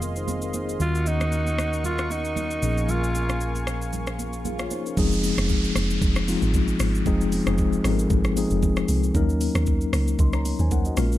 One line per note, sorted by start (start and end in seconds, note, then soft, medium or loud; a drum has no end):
0.00 0.76 F1 medium
0.00 0.76 D#3 medium
0.00 0.76 G#3 medium
0.00 0.29 C4 medium
0.00 0.81 F4 medium
0.00 0.76 G#4 medium
0.00 0.16 A#4 medium
0.00 2.59 D#5 medium
0.00 0.76 F5 medium
0.00 0.76 C6 medium
0.00 high conga medium
0.00 shaker medium
0.16 0.28 D#4 medium
0.16 0.28 C5 medium
0.16 shaker soft
0.28 0.42 C4 medium
0.28 0.42 G#4 medium
0.28 high conga medium
0.28 low conga medium
0.28 shaker medium
0.42 0.54 A#4 medium
0.42 shaker soft
0.54 0.68 D#4 medium
0.54 0.68 C5 medium
0.54 high conga medium
0.54 shaker medium
0.69 0.93 D#5 medium
0.69 shaker soft
0.79 2.59 D#2 medium
0.79 2.59 D#3 medium
0.79 2.59 A#3 medium
0.79 2.60 C#4 medium
0.79 1.09 F4 loud
0.79 2.60 F#4 medium
0.79 4.93 A#4 medium
0.79 2.61 F#5 medium
0.79 4.93 C#6 medium
0.79 swell medium
0.79 low conga medium
0.79 shaker medium
0.95 shaker soft
1.06 1.85 D#4 loud
1.06 high conga medium
1.06 shaker medium
1.20 cross-stick medium
1.20 high conga medium
1.20 shaker medium
1.32 shaker medium
1.46 high conga soft
1.46 shaker soft
1.58 cross-stick loud
1.58 high conga medium
1.58 shaker medium
1.73 shaker medium
1.84 2.13 F4 loud
1.84 low conga medium
1.84 shaker medium
1.98 cross-stick medium
1.98 shaker soft
2.10 2.91 D#4 loud
2.10 high conga medium
2.10 shaker medium
2.25 shaker soft
2.36 high conga medium
2.36 low conga medium
2.36 shaker medium
2.51 shaker soft
2.62 4.67 A#1 medium
2.62 4.67 F3 medium
2.62 4.67 A#3 medium
2.62 4.42 C#4 medium
2.62 4.43 G#4 medium
2.62 4.95 F5 medium
2.62 4.95 G#5 medium
2.62 high conga medium
2.62 shaker medium
2.78 shaker soft
2.89 3.68 F4 loud
2.89 low conga medium
2.89 shaker medium
3.04 shaker soft
3.15 high conga medium
3.15 shaker medium
3.29 cross-stick medium
3.29 high conga medium
3.29 shaker medium
3.41 shaker medium
3.55 high conga soft
3.55 shaker soft
3.67 cross-stick loud
3.67 high conga medium
3.67 shaker medium
3.82 shaker medium
3.93 low conga medium
3.93 shaker medium
4.07 cross-stick medium
4.07 shaker soft
4.19 high conga medium
4.19 shaker medium
4.33 shaker soft
4.45 4.60 G#4 medium
4.45 4.59 F5 medium
4.45 high conga medium
4.45 low conga medium
4.45 shaker medium
4.59 4.71 F4 medium
4.59 4.71 C#5 medium
4.59 cross-stick medium
4.59 shaker medium
4.71 4.86 D#4 medium
4.71 4.85 C5 medium
4.71 high conga medium
4.71 shaker medium
4.86 5.11 C#4 medium
4.86 5.11 A#4 medium
4.86 shaker soft
4.97 5.32 F1 loud
4.97 5.81 F3 loud
4.97 5.82 G#3 loud
4.97 5.82 C4 loud
4.97 5.82 D#4 loud
4.97 5.82 G#4 loud
4.97 kick loud
4.97 downlifter medium
4.97 low conga medium
4.97 shaker medium
5.12 shaker medium
5.23 open hi-hat medium
5.23 high conga medium
5.23 shaker medium
5.38 5.70 F1 medium
5.38 cross-stick loud
5.38 high conga medium
5.38 shaker medium
5.49 kick medium
5.49 shaker medium
5.64 shaker soft
5.76 5.98 F1 medium
5.76 cross-stick loud
5.76 open hi-hat medium
5.76 high conga medium
5.76 shaker medium
5.90 shaker medium
6.02 6.36 F1 loud
6.02 kick loud
6.02 low conga medium
6.02 shaker medium
6.16 cross-stick loud
6.16 shaker soft
6.28 6.91 F3 medium
6.28 6.92 G#3 medium
6.28 6.92 C4 medium
6.28 6.92 D#4 medium
6.28 6.92 F4 loud
6.28 open hi-hat medium
6.28 high conga medium
6.28 shaker medium
6.42 6.74 G#1 loud
6.42 shaker soft
6.54 kick medium
6.54 high conga medium
6.54 low conga medium
6.54 shaker medium
6.68 shaker medium
6.80 7.02 G#1 medium
6.80 cross-stick loud
6.80 open hi-hat medium
6.80 high conga medium
6.80 shaker loud
6.95 shaker soft
7.06 7.41 F1 loud
7.06 7.38 F3 loud
7.06 7.38 G#3 loud
7.06 7.38 C4 loud
7.06 7.38 D#4 loud
7.06 7.38 G#4 loud
7.06 kick loud
7.06 low conga medium
7.06 shaker medium
7.21 shaker medium
7.32 open hi-hat medium
7.32 high conga medium
7.32 shaker medium
7.47 7.79 F1 loud
7.47 7.77 F3 medium
7.47 7.78 G#3 medium
7.47 7.78 C4 medium
7.47 7.78 D#4 medium
7.47 7.78 G#4 loud
7.47 cross-stick loud
7.47 high conga medium
7.47 shaker medium
7.58 kick medium
7.58 shaker medium
7.73 shaker soft
7.84 8.07 G#1 medium
7.84 8.27 F3 medium
7.84 8.27 G#3 medium
7.84 8.28 C4 medium
7.84 8.28 D#4 medium
7.84 7.92 A4 medium
7.84 cross-stick loud
7.84 open hi-hat medium
7.84 high conga medium
7.84 shaker medium
7.92 8.31 A#4 loud
7.99 shaker medium
8.10 8.45 G#1 loud
8.10 kick loud
8.10 low conga medium
8.10 shaker medium
8.24 cross-stick medium
8.24 shaker soft
8.36 9.00 F3 loud
8.36 9.00 G#3 medium
8.36 9.01 C4 medium
8.36 9.01 D#4 medium
8.36 9.01 G#4 loud
8.36 open hi-hat medium
8.36 high conga medium
8.36 shaker medium
8.50 8.83 F1 medium
8.50 shaker soft
8.63 kick medium
8.63 high conga medium
8.63 low conga medium
8.63 shaker medium
8.76 cross-stick loud
8.76 shaker medium
8.88 9.11 C2 medium
8.88 open hi-hat medium
8.88 high conga medium
8.88 shaker loud
9.04 shaker medium
9.15 9.49 D#2 loud
9.15 9.99 F#3 loud
9.15 9.99 A#3 loud
9.15 9.99 C#4 loud
9.15 9.99 D#4 loud
9.15 10.00 A#4 loud
9.15 kick loud
9.15 low conga medium
9.15 shaker medium
9.29 shaker medium
9.41 open hi-hat medium
9.41 high conga medium
9.41 shaker medium
9.55 9.87 D#2 medium
9.55 cross-stick loud
9.55 high conga medium
9.55 shaker medium
9.66 kick loud
9.66 shaker medium
9.81 shaker soft
9.93 10.15 C#2 medium
9.93 cross-stick loud
9.93 open hi-hat medium
9.93 high conga medium
9.93 shaker medium
10.08 shaker medium
10.19 10.54 C#2 loud
10.19 10.34 D#5 medium
10.19 10.33 C6 medium
10.19 kick loud
10.19 low conga medium
10.19 shaker medium
10.33 10.59 C#5 medium
10.33 10.59 A#5 medium
10.33 cross-stick medium
10.33 shaker medium
10.45 open hi-hat medium
10.45 high conga medium
10.45 shaker medium
10.59 10.92 D#2 loud
10.59 10.72 C5 medium
10.59 10.71 G#5 medium
10.59 shaker soft
10.71 10.86 A#4 medium
10.71 10.85 F#5 medium
10.71 kick medium
10.71 high conga medium
10.71 low conga medium
10.71 shaker medium
10.85 11.11 F#4 medium
10.85 11.11 D#5 medium
10.85 shaker medium
10.97 11.18 A#1 loud
10.97 11.18 G#3 loud
10.97 11.18 A#3 medium
10.97 11.18 C#4 medium
10.97 11.18 F4 loud
10.97 11.18 A#4 loud
10.97 cross-stick loud
10.97 open hi-hat medium
10.97 high conga medium
10.97 shaker loud
11.12 shaker soft